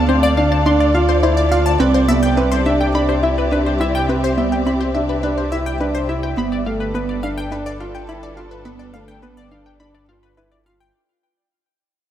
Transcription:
Already playing: D2 D4 A4 D5 F5
0.09 C4 C5
0.23 D5
0.37 D4 F5
0.52 A5
0.66 D4 C6
0.80 D5
0.94 F4 F5
1.09 C5
1.23 E4 C5
1.37 D5
1.51 F4 F5
1.66 A5
1.80 C2 C4 B4
1.94 C5
2.08 B3 G4 E5
2.15 E5
2.23 G5
2.37 C4 B4
2.52 C5
2.66 D4 E5
2.81 G5
2.94 D4 B5
3.09 C5
3.23 E4 E5
3.38 B4
3.52 D4 B4
3.66 C5
3.80 E4 E5
3.95 G5
4.09 C4 B4
4.24 C5
4.37 B3 E5
4.52 G5
4.66 C4 B5
4.81 C5
4.95 D4 E5
5.09 B4
5.23 D4 B4
5.38 C5
5.52 E4 E5
5.66 G5
5.80 D4 B4
5.95 C5
6.09 E4 E5
6.23 G5
6.37 G1 G3 B3 B5
6.52 D5
6.66 A3 F5
6.78 A4 B4
6.94 B3 D4 B4
7.09 D5
7.23 D4 F5
7.38 G5
7.51 D4 B4
7.66 D5
7.80 F4 F5
7.95 G5
8.09 E4 B5
8.23 D5
8.37 F4 F5
8.51 B4
8.65 B3 B4
8.79 D5
8.94 A3 F5
9.08 G5
9.23 B3 B4
9.37 D5
9.51 D4 F5
9.66 G5
9.80 D4 B5
9.95 D5
10.09 F4 F5
10.23 B4
10.37 E4 B4
10.52 D5
10.66 F4 F5
10.80 G5

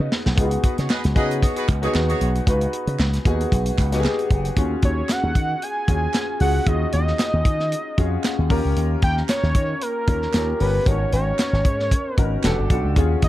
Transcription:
Already playing: B3 D#4 F#4 G#4
0.12 snare
0.26 B1, snare
0.37 C#2 B3 D#4 F4 G#4, kick, closed hi-hat
0.44 F#4
0.51 closed hi-hat
0.63 F#4 G#4 B4, kick, closed hi-hat
0.78 C#3 F#4 G#4 C#5, snare, closed hi-hat
0.90 G#4 B4 D#5, snare, clap
1.04 C#2, snare, closed hi-hat
1.15 C#3 B3 D#4 F#4 G#4 B4 D#5, kick, closed hi-hat
1.31 closed hi-hat
1.42 F#4 G#4 C#5, kick, closed hi-hat
1.56 F#4 G#4 B4, closed hi-hat
1.68 C#2, kick, clap, closed hi-hat
1.82 B3 D#4 F#4 G#4 C#5, closed hi-hat
1.94 D#2, snare, clap
2.09 F#4 G#4 C#5, closed hi-hat
2.21 B1, closed hi-hat
2.35 closed hi-hat
2.47 C#2 B3 D#4 F#4 B4, kick, closed hi-hat
2.61 closed hi-hat
2.73 closed hi-hat
2.87 C#3, closed hi-hat
2.99 C#2, snare, clap
3.13 snare, closed hi-hat
3.25 D#2 B3 D#4 F#4 G#4, kick, closed hi-hat
3.40 closed hi-hat
3.52 B1, kick, closed hi-hat
3.66 closed hi-hat
3.78 C#2, kick, clap, closed hi-hat
3.92 B3 D#4 F#4 G4, snare, closed hi-hat
4.00 G#4
4.04 snare, clap
4.19 closed hi-hat
4.30 F#1, kick, closed hi-hat
4.45 closed hi-hat
4.56 D#2 C#4 F4 F#4 G#4, kick, closed hi-hat
4.82 D#2 C#5, kick, closed hi-hat
5.09 F#5, snare, clap, closed hi-hat
5.23 D#2
5.35 D#3, kick, closed hi-hat
5.62 G#5, closed hi-hat
5.87 D#2 C#4 F4 F#4 G#4, kick, closed hi-hat
6.14 snare, clap, closed hi-hat
6.40 C#2 C#4 F4 F#4 G#4 F#5, open hi-hat
6.66 D#2 C#4 F4 F#4 G#4 D#5, kick, closed hi-hat
6.92 D#2 D#5, closed hi-hat
7.08 snare
7.19 snare, clap, closed hi-hat
7.33 D#2
7.45 D#3, kick, closed hi-hat
7.60 snare
7.72 closed hi-hat
7.97 F2 C#4 F4 F#4 G#4 F5, kick, closed hi-hat
8.24 F#5, snare, clap, closed hi-hat
8.39 D#2
8.50 D#2 C#4 F4 G4 A#4 A#5, kick, open hi-hat
8.65 C#2
8.76 D#2, closed hi-hat
9.02 D#2 G5, kick, closed hi-hat
9.17 snare
9.29 C#5, snare, clap, closed hi-hat
9.43 D#2, snare
9.55 D#3, kick, closed hi-hat
9.81 A#4, closed hi-hat
10.07 D#2 C#4 F4 G4 A#4, kick, closed hi-hat
10.22 snare
10.33 D#2 C#4 F4 G4 A#4, snare, clap, closed hi-hat
10.59 G1 C#4 F4 G4 A#4 B4, open hi-hat
10.86 G#1 B3 D#4 F#4 A#4 C#5, kick, closed hi-hat
10.92 C#4
11.12 G#1 C#5, closed hi-hat
11.39 snare, clap, closed hi-hat
11.53 G#1, snare
11.65 G#2, kick, closed hi-hat
11.80 snare
11.91 kick, closed hi-hat
12.15 G#1 C#4 D#4 F#4 A#4 B4, kick, closed hi-hat
12.43 E1 D4 F#4 G4 A4, snare, clap, closed hi-hat
12.58 G1
12.70 B1 D4 F#4 G4 A4, kick, closed hi-hat
12.84 C#2
12.96 D#2 C#4 F4 F#4 G#4, kick, closed hi-hat
13.22 D#2 D#5, kick, closed hi-hat

